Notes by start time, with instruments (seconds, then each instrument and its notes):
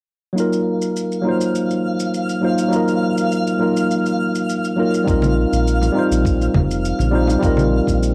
0.33 tine electric piano F#3 A#3 D#4
0.38 tine electric piano F4 A#4, synth texture F5, shaker
0.53 shaker
0.82 shaker
0.96 shaker
1.12 shaker
1.21 tine electric piano F#3 A#3 D#4
1.27 tine electric piano F4 C5
1.41 shaker
1.55 shaker
1.71 shaker
2.00 shaker
2.14 shaker
2.29 shaker
2.41 tine electric piano F#3 A#3 D#4 F4 C5
2.58 shaker
2.69 tine electric piano F#3 A#3 D#4, shaker
2.74 tine electric piano F4 A#4
2.88 shaker
3.18 shaker
3.32 shaker
3.47 shaker
3.59 tine electric piano F#3 A#3 D#4 F4 A#4
3.77 shaker
3.91 shaker
4.06 shaker
4.35 shaker
4.49 shaker
4.65 shaker
4.76 tine electric piano F#3 A#3 D#4 F4 A#4
4.94 shaker
5.03 tine electric piano G3 C4 D#4
5.08 analog synth bass A#1, tine electric piano F4 A#4, kick, shaker
5.22 high conga, shaker
5.52 analog synth bass A#1, shaker
5.67 shaker
5.81 low conga, shaker
5.92 tine electric piano G3 C4 D#4
5.97 tine electric piano F4 C5
6.11 analog synth bass A#1, shaker
6.25 kick, shaker
6.41 shaker
6.54 analog synth bass F1, kick, high conga
6.71 shaker
6.85 shaker
6.99 analog synth bass A#1, high conga, shaker
7.11 tine electric piano G3 C4 D#4 F4 C5
7.27 low conga, shaker
7.39 analog synth bass A#1, tine electric piano G3 C4 D#4, kick
7.44 tine electric piano F4 A#4, shaker
7.57 high conga, shaker
7.87 analog synth bass A#1, kick, shaker
8.03 shaker